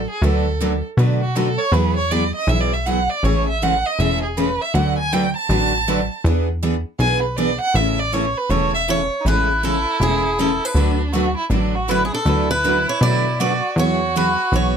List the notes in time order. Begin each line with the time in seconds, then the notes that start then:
0.10 G#4
0.22 D2 D3 F#3 A3 D4 F#4 A4 B4
0.61 D3 F#3 A3 D4 F#4 B4
0.97 B2 D3 F#3 A3 D4 F#4 B4
1.22 F#4
1.36 D3 F#3 A3 D4 F#4 A4 B4
1.58 C#5
1.72 E2 E3 F#3 B3 E4 G#4 B4
1.96 C#5
2.11 E3 F#3 B3 E4 G#4 D5
2.35 D#5
2.47 B1 E3 F#3 B3 E4 G#4 E5
2.60 D5
2.73 E5
2.86 E3 F#3 B3 E4 G#4 F#5
3.10 D5
3.23 A1 C#3 E3 G#3 A3 C#4 E4 G#4 A4 C#5
3.48 E5
3.62 C#3 E3 G#3 A3 C#4 E4 G#4 A4 F#5
3.86 D#5
3.99 E1 C#3 E3 G#3 A3 C#4 E4 G#4 A4 E5
4.23 G#4
4.37 C#3 E3 G#3 A3 C#4 E4 G#4 A4 B4
4.61 E5
4.74 D2 D3 F#3 A3 D4 F#4 B4 F#5
4.98 G#5
5.13 D3 F#3 A3 D4 F#4 B4 G5
5.36 A5
5.49 A1 D3 F#3 A3 D4 F#4 B4
5.88 D3 F#3 A3 D4 F#4 B4
6.24 E2 E3 B3 D4 G#4 B4
6.63 E3 B3 D4 G#4 B4
6.99 B1 E3 B3 D4 G#4 B4 G#5
7.22 B4
7.37 E3 B3 D4 G#4 B4 D5
7.61 F#5
7.74 A1 C#3 E3 A3 C#4 E4 A4 E5
7.99 D5
8.12 C#3 E3 A3 C#4 E4 A4 C#5
8.37 B4
8.50 E1 C#3 E3 A3 C#4 E4 A4 C#5
8.74 E5
8.88 C#3 E3 A3 C#4 E4 A4 C#5
9.20 D#4
9.25 A1 C#3 E3 G#3 A3 C#4 E4 G#4 A4 B4
9.63 C#3 E3 G#3 A3 C#4 E4 G#4 A4
10.00 E1 C#3 E3 G#3 A3 C#4 E4 G#4 A4
10.39 C#3 E3 G#3 A3 C#4 E4 G#4 A4
10.65 B4
10.75 D2 D3 F#3 A3 D4 F#4 B4
11.13 D3 F#3 A3 D4 F#4 B4
11.37 E4
11.50 A1 D3 F#3 A3 D4 F#4 B4
11.75 F#4
11.88 D3 F#3 A3 D4 E4 F#4 B4
12.05 G#4
12.13 D4 A4
12.25 D2 D3 F#3 A3 D4 E4 F#4 B4
12.51 B4
12.64 D3 F#3 A3 D4 F#4 B4
12.89 C#5
13.01 B2 D3 F#3 A3 D4 F#4 B4 D5
13.40 D3 F#3 A3 D4 F#4 B4 D5
13.76 E2 E3 F#3 B3 E4 F#4 G#4 C#5
14.16 E3 F#3 B3 E4 G#4 B4
14.52 B1 E3 F#3 B3 E4 G#4 C#5